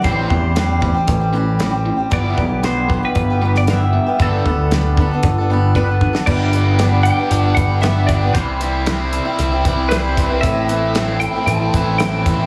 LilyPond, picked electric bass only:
\new Staff \with { instrumentName = "Picked electric bass" } { \clef bass \time 4/4 \key a \minor \tempo 4 = 115 a,,8 e,4. a,,2 | g,,8 b,,4. g,,2 | g,,8 d,4. g,,2 | g,,2 g,,8 g,,4. |
c,2 c,8 c,4. | a,,2 a,,8 a,,4. | }